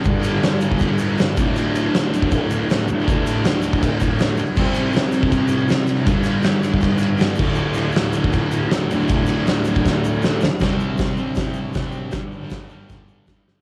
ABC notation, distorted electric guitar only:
X:1
M:4/4
L:1/8
Q:1/4=159
K:Clyd
V:1 name="Distorted electric guitar" clef=bass
[G,,D,G,]6- [G,,D,G,] [D,,A,,D,]- | [D,,A,,D,]6- [D,,A,,D,] [D,,A,,D,]- | [D,,A,,D,]6- [D,,A,,D,] z | [C,G,C]8 |
[G,,D,G,]6- [G,,D,G,] [D,,A,,D,]- | [D,,A,,D,]6- [D,,A,,D,] [D,,A,,D,]- | [D,,A,,D,]6- [D,,A,,D,] z | [C,G,C]3 [C,G,C]3 [C,G,C]2 |
[G,,D,G,]3 [G,,D,G,]3 [G,,D,G,]2 |]